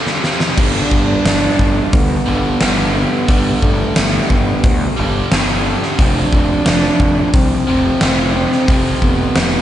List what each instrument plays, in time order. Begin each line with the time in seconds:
Already playing: overdriven electric guitar G2 D3 G3
0.06 snare
0.23 overdriven electric guitar F2 C3 F3, snare
0.40 snare
0.56 picked electric bass G1, overdriven electric guitar G2 D3 G3, french horn D4, kick, crash
0.91 picked electric bass G1, kick
1.25 picked electric bass G1, snare, open hi-hat
1.59 picked electric bass G1, kick
1.93 picked electric bass D2, french horn B3, kick, open hi-hat
2.26 picked electric bass G1, overdriven electric guitar G2 D3 G3
2.60 picked electric bass G1, overdriven electric guitar G2 D3 G3, snare, open hi-hat
2.95 french horn B3
3.27 picked electric bass G1, overdriven electric guitar G2 D3 G3, kick, open hi-hat
3.62 picked electric bass G1, french horn A3, kick
3.96 picked electric bass G1, snare, open hi-hat
4.29 picked electric bass G1, french horn B3, kick
4.64 picked electric bass D2, kick, open hi-hat
4.96 picked electric bass G1, overdriven electric guitar G2 D3 G3
5.31 picked electric bass G1, overdriven electric guitar G2 D3 G3, snare, open hi-hat
5.83 snare
5.97 picked electric bass F1, overdriven electric guitar F2 C3 F3, french horn D4, kick, open hi-hat
6.33 picked electric bass F1, kick
6.66 picked electric bass F1, snare, open hi-hat
6.83 snare
7.00 picked electric bass F1, kick
7.34 picked electric bass C2, french horn C4, kick, open hi-hat
7.67 picked electric bass F1, overdriven electric guitar F2 C3 F3
8.00 picked electric bass F1, overdriven electric guitar F2 C3 F3, snare, open hi-hat
8.35 french horn C4
8.52 snare
8.67 picked electric bass F1, overdriven electric guitar F2 C3 F3, kick, open hi-hat
9.02 picked electric bass F1, french horn B3, kick
9.36 picked electric bass F1, snare, open hi-hat